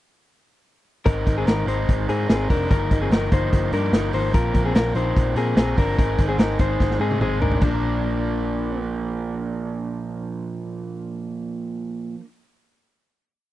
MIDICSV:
0, 0, Header, 1, 5, 480
1, 0, Start_track
1, 0, Tempo, 409836
1, 1246, Time_signature, 4, 2, 24, 8
1, 15839, End_track
2, 0, Start_track
2, 0, Title_t, "Clean electric guitar"
2, 0, Program_c, 0, 27
2, 1238, Note_on_c, 0, 70, 82
2, 1249, Note_on_c, 0, 63, 64
2, 1581, Note_off_c, 0, 70, 0
2, 1586, Note_off_c, 0, 63, 0
2, 1613, Note_on_c, 0, 68, 71
2, 1621, Note_on_c, 0, 60, 54
2, 1723, Note_off_c, 0, 68, 0
2, 1728, Note_on_c, 0, 70, 71
2, 1734, Note_off_c, 0, 60, 0
2, 1740, Note_on_c, 0, 63, 54
2, 1966, Note_off_c, 0, 63, 0
2, 1966, Note_off_c, 0, 70, 0
2, 1971, Note_on_c, 0, 72, 61
2, 1980, Note_on_c, 0, 63, 48
2, 2421, Note_off_c, 0, 72, 0
2, 2426, Note_off_c, 0, 63, 0
2, 2450, Note_on_c, 0, 68, 70
2, 2459, Note_on_c, 0, 60, 56
2, 2673, Note_off_c, 0, 68, 0
2, 2680, Note_off_c, 0, 60, 0
2, 2687, Note_on_c, 0, 68, 65
2, 2694, Note_on_c, 0, 60, 53
2, 2927, Note_off_c, 0, 68, 0
2, 2931, Note_off_c, 0, 60, 0
2, 2931, Note_on_c, 0, 70, 70
2, 2940, Note_on_c, 0, 62, 53
2, 3154, Note_off_c, 0, 70, 0
2, 3168, Note_on_c, 0, 70, 85
2, 3174, Note_off_c, 0, 62, 0
2, 3181, Note_on_c, 0, 63, 61
2, 3507, Note_off_c, 0, 70, 0
2, 3514, Note_off_c, 0, 63, 0
2, 3532, Note_on_c, 0, 68, 66
2, 3540, Note_on_c, 0, 60, 51
2, 3650, Note_off_c, 0, 68, 0
2, 3654, Note_off_c, 0, 60, 0
2, 3660, Note_on_c, 0, 70, 69
2, 3670, Note_on_c, 0, 63, 58
2, 3894, Note_off_c, 0, 70, 0
2, 3895, Note_off_c, 0, 63, 0
2, 3902, Note_on_c, 0, 72, 68
2, 3909, Note_on_c, 0, 63, 51
2, 4347, Note_off_c, 0, 72, 0
2, 4350, Note_off_c, 0, 63, 0
2, 4375, Note_on_c, 0, 70, 74
2, 4381, Note_on_c, 0, 62, 54
2, 4597, Note_off_c, 0, 70, 0
2, 4611, Note_on_c, 0, 70, 65
2, 4615, Note_off_c, 0, 62, 0
2, 4624, Note_on_c, 0, 63, 53
2, 4845, Note_off_c, 0, 63, 0
2, 4846, Note_off_c, 0, 70, 0
2, 4851, Note_on_c, 0, 72, 74
2, 4859, Note_on_c, 0, 63, 54
2, 5081, Note_off_c, 0, 72, 0
2, 5085, Note_on_c, 0, 70, 91
2, 5093, Note_off_c, 0, 63, 0
2, 5097, Note_on_c, 0, 65, 66
2, 5425, Note_off_c, 0, 70, 0
2, 5431, Note_off_c, 0, 65, 0
2, 5452, Note_on_c, 0, 68, 68
2, 5461, Note_on_c, 0, 60, 57
2, 5564, Note_off_c, 0, 68, 0
2, 5568, Note_on_c, 0, 70, 77
2, 5574, Note_off_c, 0, 60, 0
2, 5577, Note_on_c, 0, 65, 57
2, 5802, Note_off_c, 0, 70, 0
2, 5807, Note_on_c, 0, 72, 67
2, 5812, Note_off_c, 0, 65, 0
2, 5819, Note_on_c, 0, 63, 52
2, 6258, Note_off_c, 0, 72, 0
2, 6264, Note_off_c, 0, 63, 0
2, 6293, Note_on_c, 0, 68, 74
2, 6305, Note_on_c, 0, 60, 57
2, 6512, Note_off_c, 0, 68, 0
2, 6520, Note_off_c, 0, 60, 0
2, 6527, Note_on_c, 0, 68, 71
2, 6534, Note_on_c, 0, 60, 51
2, 6766, Note_off_c, 0, 68, 0
2, 6770, Note_off_c, 0, 60, 0
2, 6773, Note_on_c, 0, 70, 77
2, 6779, Note_on_c, 0, 62, 56
2, 6996, Note_off_c, 0, 70, 0
2, 7010, Note_on_c, 0, 70, 84
2, 7012, Note_off_c, 0, 62, 0
2, 7015, Note_on_c, 0, 63, 70
2, 7346, Note_off_c, 0, 70, 0
2, 7349, Note_off_c, 0, 63, 0
2, 7362, Note_on_c, 0, 68, 68
2, 7373, Note_on_c, 0, 60, 57
2, 7482, Note_off_c, 0, 68, 0
2, 7487, Note_on_c, 0, 70, 71
2, 7489, Note_off_c, 0, 60, 0
2, 7500, Note_on_c, 0, 63, 60
2, 7725, Note_off_c, 0, 70, 0
2, 7732, Note_off_c, 0, 63, 0
2, 7737, Note_on_c, 0, 72, 69
2, 7745, Note_on_c, 0, 63, 52
2, 8182, Note_off_c, 0, 72, 0
2, 8186, Note_off_c, 0, 63, 0
2, 8208, Note_on_c, 0, 68, 71
2, 8221, Note_on_c, 0, 60, 60
2, 8440, Note_off_c, 0, 68, 0
2, 8448, Note_off_c, 0, 60, 0
2, 8454, Note_on_c, 0, 68, 71
2, 8462, Note_on_c, 0, 60, 52
2, 8681, Note_off_c, 0, 68, 0
2, 8685, Note_on_c, 0, 70, 70
2, 8691, Note_off_c, 0, 60, 0
2, 8696, Note_on_c, 0, 62, 55
2, 8909, Note_off_c, 0, 62, 0
2, 8923, Note_on_c, 0, 62, 70
2, 8924, Note_off_c, 0, 70, 0
2, 10316, Note_off_c, 0, 62, 0
2, 15839, End_track
3, 0, Start_track
3, 0, Title_t, "Overdriven electric guitar"
3, 0, Program_c, 1, 29
3, 1233, Note_on_c, 1, 56, 64
3, 1236, Note_on_c, 1, 60, 77
3, 1247, Note_on_c, 1, 63, 76
3, 1254, Note_on_c, 1, 70, 86
3, 1466, Note_off_c, 1, 56, 0
3, 1470, Note_off_c, 1, 60, 0
3, 1480, Note_off_c, 1, 63, 0
3, 1480, Note_on_c, 1, 56, 52
3, 1483, Note_off_c, 1, 70, 0
3, 1484, Note_on_c, 1, 60, 59
3, 1494, Note_on_c, 1, 63, 65
3, 1497, Note_on_c, 1, 70, 66
3, 1932, Note_off_c, 1, 56, 0
3, 1938, Note_off_c, 1, 60, 0
3, 1946, Note_on_c, 1, 56, 59
3, 1952, Note_on_c, 1, 60, 62
3, 1957, Note_off_c, 1, 63, 0
3, 1962, Note_on_c, 1, 63, 66
3, 1964, Note_off_c, 1, 70, 0
3, 1968, Note_on_c, 1, 70, 66
3, 2433, Note_off_c, 1, 56, 0
3, 2440, Note_off_c, 1, 60, 0
3, 2447, Note_on_c, 1, 56, 56
3, 2452, Note_on_c, 1, 60, 63
3, 2460, Note_off_c, 1, 63, 0
3, 2460, Note_off_c, 1, 70, 0
3, 2464, Note_on_c, 1, 63, 63
3, 2464, Note_on_c, 1, 70, 59
3, 2673, Note_off_c, 1, 56, 0
3, 2681, Note_off_c, 1, 60, 0
3, 2687, Note_off_c, 1, 63, 0
3, 2688, Note_on_c, 1, 56, 54
3, 2691, Note_off_c, 1, 70, 0
3, 2695, Note_on_c, 1, 60, 62
3, 2701, Note_on_c, 1, 63, 64
3, 2705, Note_on_c, 1, 70, 65
3, 2913, Note_off_c, 1, 56, 0
3, 2918, Note_off_c, 1, 60, 0
3, 2927, Note_on_c, 1, 56, 57
3, 2929, Note_off_c, 1, 63, 0
3, 2932, Note_on_c, 1, 60, 63
3, 2937, Note_off_c, 1, 70, 0
3, 2943, Note_on_c, 1, 63, 64
3, 2948, Note_on_c, 1, 70, 62
3, 3161, Note_off_c, 1, 63, 0
3, 3161, Note_on_c, 1, 43, 71
3, 3168, Note_off_c, 1, 56, 0
3, 3168, Note_off_c, 1, 70, 0
3, 3169, Note_on_c, 1, 51, 79
3, 3170, Note_off_c, 1, 60, 0
3, 3172, Note_on_c, 1, 53, 71
3, 3175, Note_on_c, 1, 63, 79
3, 3179, Note_on_c, 1, 58, 75
3, 3182, Note_on_c, 1, 70, 78
3, 3398, Note_off_c, 1, 53, 0
3, 3404, Note_off_c, 1, 58, 0
3, 3405, Note_off_c, 1, 43, 0
3, 3409, Note_off_c, 1, 51, 0
3, 3412, Note_off_c, 1, 63, 0
3, 3412, Note_on_c, 1, 53, 60
3, 3415, Note_off_c, 1, 70, 0
3, 3418, Note_on_c, 1, 58, 66
3, 3426, Note_on_c, 1, 63, 59
3, 3435, Note_on_c, 1, 70, 60
3, 3878, Note_off_c, 1, 53, 0
3, 3883, Note_on_c, 1, 53, 59
3, 3886, Note_off_c, 1, 63, 0
3, 3887, Note_off_c, 1, 58, 0
3, 3892, Note_on_c, 1, 58, 59
3, 3900, Note_on_c, 1, 63, 65
3, 3902, Note_off_c, 1, 70, 0
3, 3907, Note_on_c, 1, 70, 67
3, 4349, Note_off_c, 1, 53, 0
3, 4354, Note_on_c, 1, 53, 59
3, 4356, Note_off_c, 1, 63, 0
3, 4358, Note_off_c, 1, 58, 0
3, 4363, Note_on_c, 1, 58, 59
3, 4370, Note_off_c, 1, 70, 0
3, 4370, Note_on_c, 1, 63, 58
3, 4375, Note_on_c, 1, 70, 72
3, 4586, Note_off_c, 1, 53, 0
3, 4595, Note_off_c, 1, 58, 0
3, 4600, Note_on_c, 1, 53, 59
3, 4601, Note_off_c, 1, 63, 0
3, 4604, Note_off_c, 1, 70, 0
3, 4609, Note_on_c, 1, 58, 55
3, 4615, Note_on_c, 1, 63, 68
3, 4618, Note_on_c, 1, 70, 62
3, 4823, Note_off_c, 1, 53, 0
3, 4828, Note_off_c, 1, 58, 0
3, 4837, Note_on_c, 1, 53, 56
3, 4840, Note_off_c, 1, 63, 0
3, 4840, Note_off_c, 1, 70, 0
3, 4842, Note_on_c, 1, 58, 62
3, 4854, Note_on_c, 1, 63, 65
3, 4854, Note_on_c, 1, 70, 65
3, 5062, Note_off_c, 1, 53, 0
3, 5063, Note_off_c, 1, 58, 0
3, 5073, Note_on_c, 1, 46, 70
3, 5076, Note_on_c, 1, 53, 72
3, 5077, Note_on_c, 1, 58, 73
3, 5078, Note_off_c, 1, 70, 0
3, 5081, Note_off_c, 1, 63, 0
3, 5086, Note_on_c, 1, 60, 78
3, 5092, Note_on_c, 1, 70, 79
3, 5297, Note_off_c, 1, 53, 0
3, 5308, Note_off_c, 1, 58, 0
3, 5311, Note_on_c, 1, 53, 56
3, 5317, Note_off_c, 1, 60, 0
3, 5320, Note_off_c, 1, 46, 0
3, 5322, Note_off_c, 1, 70, 0
3, 5322, Note_on_c, 1, 58, 59
3, 5331, Note_on_c, 1, 60, 59
3, 5336, Note_on_c, 1, 70, 64
3, 5781, Note_off_c, 1, 53, 0
3, 5789, Note_off_c, 1, 58, 0
3, 5795, Note_on_c, 1, 53, 62
3, 5803, Note_on_c, 1, 58, 61
3, 5805, Note_off_c, 1, 60, 0
3, 5807, Note_off_c, 1, 70, 0
3, 5810, Note_on_c, 1, 60, 64
3, 5821, Note_on_c, 1, 70, 64
3, 6258, Note_off_c, 1, 53, 0
3, 6263, Note_off_c, 1, 58, 0
3, 6272, Note_on_c, 1, 53, 61
3, 6277, Note_on_c, 1, 58, 62
3, 6281, Note_off_c, 1, 70, 0
3, 6283, Note_off_c, 1, 60, 0
3, 6288, Note_on_c, 1, 60, 63
3, 6295, Note_on_c, 1, 70, 70
3, 6502, Note_off_c, 1, 53, 0
3, 6516, Note_on_c, 1, 53, 57
3, 6517, Note_off_c, 1, 58, 0
3, 6520, Note_off_c, 1, 60, 0
3, 6530, Note_off_c, 1, 70, 0
3, 6531, Note_on_c, 1, 58, 60
3, 6534, Note_on_c, 1, 60, 71
3, 6545, Note_on_c, 1, 70, 65
3, 6754, Note_off_c, 1, 53, 0
3, 6760, Note_off_c, 1, 58, 0
3, 6768, Note_on_c, 1, 53, 52
3, 6770, Note_off_c, 1, 60, 0
3, 6774, Note_on_c, 1, 58, 54
3, 6775, Note_off_c, 1, 70, 0
3, 6787, Note_on_c, 1, 60, 64
3, 6795, Note_on_c, 1, 70, 69
3, 7001, Note_off_c, 1, 60, 0
3, 7001, Note_on_c, 1, 44, 72
3, 7006, Note_off_c, 1, 53, 0
3, 7006, Note_on_c, 1, 51, 73
3, 7009, Note_off_c, 1, 58, 0
3, 7013, Note_on_c, 1, 56, 77
3, 7015, Note_off_c, 1, 70, 0
3, 7015, Note_on_c, 1, 60, 80
3, 7016, Note_on_c, 1, 63, 78
3, 7019, Note_on_c, 1, 68, 78
3, 7232, Note_off_c, 1, 56, 0
3, 7236, Note_off_c, 1, 60, 0
3, 7243, Note_off_c, 1, 44, 0
3, 7246, Note_off_c, 1, 51, 0
3, 7246, Note_on_c, 1, 56, 58
3, 7247, Note_off_c, 1, 63, 0
3, 7250, Note_on_c, 1, 60, 59
3, 7252, Note_off_c, 1, 68, 0
3, 7261, Note_on_c, 1, 63, 65
3, 7269, Note_on_c, 1, 68, 65
3, 7702, Note_off_c, 1, 56, 0
3, 7704, Note_off_c, 1, 60, 0
3, 7716, Note_on_c, 1, 56, 62
3, 7718, Note_off_c, 1, 63, 0
3, 7718, Note_on_c, 1, 60, 58
3, 7723, Note_off_c, 1, 68, 0
3, 7732, Note_on_c, 1, 63, 63
3, 7737, Note_on_c, 1, 68, 65
3, 8178, Note_off_c, 1, 56, 0
3, 8190, Note_off_c, 1, 60, 0
3, 8192, Note_on_c, 1, 56, 53
3, 8199, Note_off_c, 1, 63, 0
3, 8202, Note_off_c, 1, 68, 0
3, 8204, Note_on_c, 1, 60, 61
3, 8213, Note_on_c, 1, 63, 59
3, 8216, Note_on_c, 1, 68, 64
3, 8421, Note_off_c, 1, 56, 0
3, 8430, Note_off_c, 1, 60, 0
3, 8435, Note_on_c, 1, 56, 60
3, 8444, Note_on_c, 1, 60, 61
3, 8445, Note_off_c, 1, 63, 0
3, 8446, Note_off_c, 1, 68, 0
3, 8459, Note_on_c, 1, 63, 63
3, 8460, Note_on_c, 1, 68, 68
3, 8664, Note_off_c, 1, 56, 0
3, 8669, Note_off_c, 1, 60, 0
3, 8678, Note_off_c, 1, 63, 0
3, 8678, Note_on_c, 1, 56, 63
3, 8684, Note_on_c, 1, 60, 58
3, 8685, Note_off_c, 1, 68, 0
3, 8693, Note_on_c, 1, 63, 65
3, 8699, Note_on_c, 1, 68, 65
3, 8869, Note_on_c, 1, 46, 72
3, 8920, Note_off_c, 1, 56, 0
3, 8923, Note_off_c, 1, 60, 0
3, 8928, Note_off_c, 1, 63, 0
3, 8930, Note_on_c, 1, 53, 76
3, 8931, Note_off_c, 1, 68, 0
3, 8979, Note_on_c, 1, 58, 71
3, 9022, Note_on_c, 1, 62, 69
3, 9066, Note_on_c, 1, 70, 77
3, 14230, Note_off_c, 1, 46, 0
3, 14291, Note_off_c, 1, 53, 0
3, 14340, Note_off_c, 1, 58, 0
3, 14383, Note_off_c, 1, 62, 0
3, 14427, Note_off_c, 1, 70, 0
3, 15839, End_track
4, 0, Start_track
4, 0, Title_t, "Picked electric bass"
4, 0, Program_c, 2, 34
4, 1246, Note_on_c, 2, 32, 97
4, 1443, Note_off_c, 2, 32, 0
4, 1484, Note_on_c, 2, 32, 83
4, 1682, Note_off_c, 2, 32, 0
4, 1717, Note_on_c, 2, 32, 92
4, 1918, Note_off_c, 2, 32, 0
4, 1946, Note_on_c, 2, 32, 85
4, 2152, Note_off_c, 2, 32, 0
4, 2212, Note_on_c, 2, 32, 90
4, 2407, Note_off_c, 2, 32, 0
4, 2447, Note_on_c, 2, 44, 87
4, 2644, Note_off_c, 2, 44, 0
4, 2690, Note_on_c, 2, 32, 88
4, 2886, Note_off_c, 2, 32, 0
4, 2930, Note_on_c, 2, 29, 78
4, 3126, Note_off_c, 2, 29, 0
4, 3170, Note_on_c, 2, 31, 98
4, 3366, Note_off_c, 2, 31, 0
4, 3408, Note_on_c, 2, 31, 85
4, 3605, Note_off_c, 2, 31, 0
4, 3643, Note_on_c, 2, 31, 86
4, 3842, Note_off_c, 2, 31, 0
4, 3887, Note_on_c, 2, 31, 83
4, 4085, Note_off_c, 2, 31, 0
4, 4132, Note_on_c, 2, 31, 86
4, 4327, Note_off_c, 2, 31, 0
4, 4356, Note_on_c, 2, 43, 89
4, 4557, Note_off_c, 2, 43, 0
4, 4596, Note_on_c, 2, 31, 80
4, 4797, Note_off_c, 2, 31, 0
4, 4835, Note_on_c, 2, 32, 80
4, 5083, Note_off_c, 2, 32, 0
4, 5083, Note_on_c, 2, 34, 100
4, 5282, Note_off_c, 2, 34, 0
4, 5322, Note_on_c, 2, 34, 88
4, 5521, Note_off_c, 2, 34, 0
4, 5560, Note_on_c, 2, 34, 89
4, 5760, Note_off_c, 2, 34, 0
4, 5792, Note_on_c, 2, 34, 89
4, 5995, Note_off_c, 2, 34, 0
4, 6052, Note_on_c, 2, 34, 90
4, 6246, Note_off_c, 2, 34, 0
4, 6272, Note_on_c, 2, 46, 89
4, 6474, Note_off_c, 2, 46, 0
4, 6510, Note_on_c, 2, 34, 82
4, 6713, Note_off_c, 2, 34, 0
4, 6767, Note_on_c, 2, 31, 82
4, 6963, Note_off_c, 2, 31, 0
4, 7008, Note_on_c, 2, 32, 102
4, 7203, Note_off_c, 2, 32, 0
4, 7249, Note_on_c, 2, 32, 83
4, 7444, Note_off_c, 2, 32, 0
4, 7472, Note_on_c, 2, 32, 91
4, 7674, Note_off_c, 2, 32, 0
4, 7726, Note_on_c, 2, 32, 90
4, 7922, Note_off_c, 2, 32, 0
4, 7972, Note_on_c, 2, 32, 91
4, 8166, Note_off_c, 2, 32, 0
4, 8191, Note_on_c, 2, 44, 96
4, 8393, Note_off_c, 2, 44, 0
4, 8425, Note_on_c, 2, 32, 82
4, 8629, Note_off_c, 2, 32, 0
4, 8671, Note_on_c, 2, 32, 80
4, 8873, Note_off_c, 2, 32, 0
4, 8917, Note_on_c, 2, 34, 94
4, 14231, Note_off_c, 2, 34, 0
4, 15839, End_track
5, 0, Start_track
5, 0, Title_t, "Drums"
5, 1243, Note_on_c, 9, 42, 78
5, 1244, Note_on_c, 9, 36, 96
5, 1361, Note_off_c, 9, 36, 0
5, 1361, Note_off_c, 9, 42, 0
5, 1484, Note_on_c, 9, 42, 72
5, 1485, Note_on_c, 9, 36, 79
5, 1601, Note_off_c, 9, 42, 0
5, 1602, Note_off_c, 9, 36, 0
5, 1722, Note_on_c, 9, 42, 78
5, 1731, Note_on_c, 9, 38, 101
5, 1839, Note_off_c, 9, 42, 0
5, 1848, Note_off_c, 9, 38, 0
5, 1969, Note_on_c, 9, 42, 68
5, 2086, Note_off_c, 9, 42, 0
5, 2211, Note_on_c, 9, 42, 65
5, 2212, Note_on_c, 9, 36, 79
5, 2328, Note_off_c, 9, 42, 0
5, 2329, Note_off_c, 9, 36, 0
5, 2447, Note_on_c, 9, 42, 59
5, 2564, Note_off_c, 9, 42, 0
5, 2689, Note_on_c, 9, 38, 100
5, 2694, Note_on_c, 9, 42, 73
5, 2806, Note_off_c, 9, 38, 0
5, 2811, Note_off_c, 9, 42, 0
5, 2929, Note_on_c, 9, 36, 84
5, 2933, Note_on_c, 9, 46, 67
5, 3047, Note_off_c, 9, 36, 0
5, 3050, Note_off_c, 9, 46, 0
5, 3171, Note_on_c, 9, 36, 99
5, 3171, Note_on_c, 9, 42, 78
5, 3288, Note_off_c, 9, 36, 0
5, 3288, Note_off_c, 9, 42, 0
5, 3408, Note_on_c, 9, 42, 69
5, 3409, Note_on_c, 9, 36, 82
5, 3525, Note_off_c, 9, 42, 0
5, 3526, Note_off_c, 9, 36, 0
5, 3648, Note_on_c, 9, 42, 74
5, 3657, Note_on_c, 9, 38, 96
5, 3766, Note_off_c, 9, 42, 0
5, 3774, Note_off_c, 9, 38, 0
5, 3888, Note_on_c, 9, 36, 91
5, 3888, Note_on_c, 9, 42, 70
5, 4005, Note_off_c, 9, 36, 0
5, 4005, Note_off_c, 9, 42, 0
5, 4128, Note_on_c, 9, 38, 25
5, 4132, Note_on_c, 9, 36, 84
5, 4132, Note_on_c, 9, 42, 69
5, 4245, Note_off_c, 9, 38, 0
5, 4249, Note_off_c, 9, 36, 0
5, 4249, Note_off_c, 9, 42, 0
5, 4363, Note_on_c, 9, 42, 63
5, 4480, Note_off_c, 9, 42, 0
5, 4605, Note_on_c, 9, 38, 97
5, 4610, Note_on_c, 9, 42, 75
5, 4722, Note_off_c, 9, 38, 0
5, 4727, Note_off_c, 9, 42, 0
5, 4836, Note_on_c, 9, 46, 66
5, 4953, Note_off_c, 9, 46, 0
5, 5084, Note_on_c, 9, 42, 87
5, 5086, Note_on_c, 9, 36, 97
5, 5201, Note_off_c, 9, 42, 0
5, 5203, Note_off_c, 9, 36, 0
5, 5322, Note_on_c, 9, 42, 72
5, 5325, Note_on_c, 9, 36, 82
5, 5439, Note_off_c, 9, 42, 0
5, 5442, Note_off_c, 9, 36, 0
5, 5562, Note_on_c, 9, 42, 78
5, 5571, Note_on_c, 9, 38, 106
5, 5679, Note_off_c, 9, 42, 0
5, 5688, Note_off_c, 9, 38, 0
5, 5798, Note_on_c, 9, 42, 71
5, 5915, Note_off_c, 9, 42, 0
5, 6049, Note_on_c, 9, 36, 81
5, 6055, Note_on_c, 9, 42, 65
5, 6167, Note_off_c, 9, 36, 0
5, 6173, Note_off_c, 9, 42, 0
5, 6279, Note_on_c, 9, 42, 63
5, 6396, Note_off_c, 9, 42, 0
5, 6523, Note_on_c, 9, 38, 104
5, 6528, Note_on_c, 9, 42, 76
5, 6640, Note_off_c, 9, 38, 0
5, 6645, Note_off_c, 9, 42, 0
5, 6767, Note_on_c, 9, 36, 84
5, 6767, Note_on_c, 9, 46, 64
5, 6884, Note_off_c, 9, 36, 0
5, 6884, Note_off_c, 9, 46, 0
5, 7010, Note_on_c, 9, 36, 98
5, 7014, Note_on_c, 9, 42, 83
5, 7127, Note_off_c, 9, 36, 0
5, 7131, Note_off_c, 9, 42, 0
5, 7242, Note_on_c, 9, 42, 71
5, 7246, Note_on_c, 9, 36, 82
5, 7360, Note_off_c, 9, 42, 0
5, 7363, Note_off_c, 9, 36, 0
5, 7480, Note_on_c, 9, 42, 76
5, 7489, Note_on_c, 9, 38, 105
5, 7598, Note_off_c, 9, 42, 0
5, 7606, Note_off_c, 9, 38, 0
5, 7717, Note_on_c, 9, 42, 69
5, 7723, Note_on_c, 9, 36, 94
5, 7834, Note_off_c, 9, 42, 0
5, 7840, Note_off_c, 9, 36, 0
5, 7968, Note_on_c, 9, 36, 80
5, 7969, Note_on_c, 9, 38, 48
5, 8085, Note_off_c, 9, 36, 0
5, 8086, Note_off_c, 9, 38, 0
5, 8092, Note_on_c, 9, 38, 48
5, 8209, Note_off_c, 9, 38, 0
5, 8326, Note_on_c, 9, 48, 53
5, 8443, Note_off_c, 9, 48, 0
5, 8446, Note_on_c, 9, 47, 69
5, 8563, Note_off_c, 9, 47, 0
5, 8688, Note_on_c, 9, 43, 85
5, 8803, Note_off_c, 9, 43, 0
5, 8803, Note_on_c, 9, 43, 76
5, 8917, Note_on_c, 9, 49, 71
5, 8921, Note_off_c, 9, 43, 0
5, 8922, Note_on_c, 9, 36, 89
5, 9034, Note_off_c, 9, 49, 0
5, 9039, Note_off_c, 9, 36, 0
5, 15839, End_track
0, 0, End_of_file